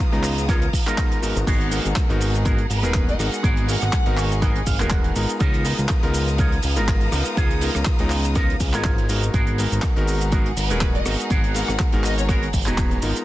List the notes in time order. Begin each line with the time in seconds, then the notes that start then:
Already playing: B3 F5 A#5 D#6
0.00 kick, closed hi-hat, shaker
0.12 C#2 G#3 B3 D#4 F4 A#5, muted clean electric guitar stroke, closed hi-hat
0.23 clap, open hi-hat, shaker
0.38 closed hi-hat, shaker
0.48 G#3 B3 D#4 F4 A#4 C#5, kick, cross-stick, closed hi-hat, shaker
0.62 closed hi-hat
0.73 kick, open hi-hat, shaker
0.86 G#3 B3 D#4 F4 A#4, clap, closed hi-hat, shaker
0.98 kick, clap, closed hi-hat, shaker
1.12 closed hi-hat
1.22 G#1 G#3 B3 D#4 F#4 A#4, open hi-hat, shaker
1.35 G#1, closed hi-hat, shaker
1.46 G#1 B3 F#4 G#4 A#4 F#5, kick, closed hi-hat, crash, shaker
1.61 closed hi-hat
1.71 G#3 B3 D#4 F#4 A#4, open hi-hat, shaker
1.85 G#1, closed hi-hat, shaker
1.96 kick, cross-stick, clap, closed hi-hat, shaker
2.09 G#1 G#3 B3 D#4 F#4 A#4, muted clean electric guitar stroke, closed hi-hat
2.20 muted clean electric guitar stroke, open hi-hat, shaker
2.35 closed hi-hat, shaker
2.45 G#3 B3 D#4 F#4 G#4 A#4, kick, closed hi-hat, shaker
2.58 closed hi-hat
2.70 G#1 B4, open hi-hat, shaker
2.83 D#1 G#3 B3 D#4 F#4 G#4 A#4, closed hi-hat, shaker
2.94 kick, clap, closed hi-hat, shaker
3.09 D#5, closed hi-hat
3.19 G#1 G#3 B3 D#4 F#4 A#4 F#5, cross-stick, open hi-hat, shaker
3.33 F#5, closed hi-hat, shaker
3.43 G#1 B3 F#4 G#4 A#4 G#5, kick, closed hi-hat, shaker
3.57 closed hi-hat
3.68 G#3 B3 D#4 F#4 A#4 F#5, open hi-hat, shaker
3.82 G#1, cross-stick, closed hi-hat, shaker
3.93 kick, cross-stick, clap, closed hi-hat, shaker
4.05 G#1 G#3 B3 D#4 F#4 A#4, muted clean electric guitar stroke, closed hi-hat
4.17 C#5, muted clean electric guitar stroke, clap, open hi-hat, shaker
4.32 closed hi-hat, shaker
4.41 G#3 B3 D#4 F#4 G#4 A#4 D#5, kick, cross-stick, closed hi-hat, shaker
4.56 closed hi-hat
4.66 G#1 F5, kick, open hi-hat, shaker
4.80 D#1 G#3 B3 D#4 F#4 G#4 A#4, clap, closed hi-hat, shaker
4.90 F#5, kick, clap, closed hi-hat, shaker
5.04 closed hi-hat
5.15 G#1 G#3 B3 D#4 F4 A#4 A#5, open hi-hat, shaker
5.29 closed hi-hat, shaker
5.39 C#2 B3 D#4 F4 A#4 F5 A#5 D#6, kick, closed hi-hat, shaker
5.54 closed hi-hat
5.65 G#3 B3 D#4 F4 A#4, open hi-hat, shaker
5.78 C#2, closed hi-hat, shaker
5.89 kick, cross-stick, clap, closed hi-hat, shaker
6.03 C#2 G#3 B3 D#4 F4 A#4, muted clean electric guitar stroke, closed hi-hat
6.14 open hi-hat, shaker
6.28 closed hi-hat, shaker
6.38 G#3 B3 D#4 F4 A#4 C#5, kick, closed hi-hat, shaker
6.52 closed hi-hat
6.62 C#2, open hi-hat, shaker
6.76 G#1 G#3 B3 D#4 F4 A#4, closed hi-hat, shaker
6.88 kick, clap, closed hi-hat, shaker
7.01 closed hi-hat
7.12 C#2 G#3 B3 D#4 F4 A#4, cross-stick, open hi-hat, shaker
7.25 closed hi-hat, shaker
7.36 C#2 B3 D#4 F4 G#4, kick, closed hi-hat, shaker
7.51 closed hi-hat
7.61 G#3 B3 D#4 F4 A#4, open hi-hat, shaker
7.75 C#2, cross-stick, closed hi-hat, shaker
7.85 kick, cross-stick, clap, closed hi-hat, shaker
7.99 C#2 G#3 B3 D#4 F4 A#5, muted clean electric guitar stroke, closed hi-hat
8.10 clap, open hi-hat, shaker
8.24 closed hi-hat, shaker
8.35 G#3 B3 D#4 F4 A#4, kick, cross-stick, closed hi-hat, shaker
8.50 closed hi-hat
8.60 C#2, kick, open hi-hat, shaker
8.73 G#1 G#3 B3 D#4 F4 A#4 C#5, clap, closed hi-hat, shaker
8.84 G#1, kick, clap, closed hi-hat, shaker
8.98 closed hi-hat
9.09 G#3 B3 D#4 F#4 A#4, open hi-hat, shaker
9.23 closed hi-hat, shaker
9.33 G#1 B3 F#4 G#4 A#4 F#5 A#5, kick, closed hi-hat, shaker
9.47 closed hi-hat
9.58 G#3 B3 D#4 F#4 A#4, open hi-hat, shaker
9.72 G#1, closed hi-hat, shaker
9.82 kick, cross-stick, clap, closed hi-hat, shaker
9.96 G#1 G#3 B3 D#4 F#4 A#4, muted clean electric guitar stroke, closed hi-hat
10.07 open hi-hat, shaker
10.21 closed hi-hat, shaker
10.32 G#3 B3 D#4 F#4 G#4 A#4, kick, closed hi-hat, shaker
10.46 closed hi-hat
10.57 G#1 B4, open hi-hat, shaker
10.69 D#1 G#3 B3 D#4 F#4 G#4 A#4, closed hi-hat, shaker
10.81 kick, clap, closed hi-hat, shaker
10.95 D#5, closed hi-hat
11.05 G#1 G#3 B3 D#4 F#4 A#4, cross-stick, open hi-hat, shaker
11.20 closed hi-hat, shaker
11.30 G#1 B3 F#4 G#4 A#4, kick, closed hi-hat, shaker
11.44 closed hi-hat
11.54 G#3 B3 D#4 F#4 A#4 F#5, open hi-hat, shaker
11.68 G#1, cross-stick, closed hi-hat, shaker
11.79 kick, cross-stick, clap, closed hi-hat, shaker
11.92 G#1 G#3 B3 D#4 F#4 A#4, muted clean electric guitar stroke, closed hi-hat
12.04 D#5, clap, open hi-hat, shaker
12.18 C#5, closed hi-hat, shaker
12.28 G#3 B3 D#4 F#4 G#4 A#4 C#5, kick, cross-stick, closed hi-hat, shaker
12.43 closed hi-hat
12.53 G#1, kick, open hi-hat, shaker
12.66 D#1 G#3 B3 D#4 F#4 G#4 B4 A#5, clap, closed hi-hat, shaker
12.78 kick, clap, closed hi-hat, shaker
12.91 closed hi-hat
13.02 G#1 G#3 B3 D#4 F4 A#4, open hi-hat, shaker
13.16 closed hi-hat, shaker